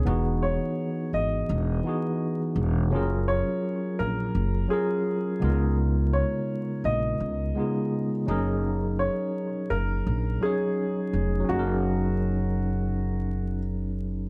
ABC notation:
X:1
M:4/4
L:1/16
Q:"Swing 16ths" 1/4=84
K:F#
V:1 name="Upright piano"
z2 c4 d6- d z3 | z2 c4 A4 G6 | z2 c4 d6- d z3 | z2 c4 A4 G6 |
F12 z4 |]
V:2 name="Tine electric piano"
[=E,B,DFG]6 z4 [E,B,DFG]4 z2 | [F,CEGA]6 z4 [F,CEGA]4 [C,G,B,DEA]2- | [C,G,B,DEA]4 z6 [C,G,B,DEG]4 [F,CDGA]2- | [F,CDGA]4 z6 [F,CDGc]4 z2 |
[F,CDGA]16 |]
V:3 name="Upright bass" clef=bass
=E,,,3 z3 G,,,2 E,,,2 z4 E,,,2 | F,,,3 z3 A,,,2 F,,,2 z4 C,,2- | C,,3 z3 A,,,2 C,,2 z4 F,,,2- | F,,,3 z3 F,,,2 A,,,2 z4 E,,,2 |
F,,,16 |]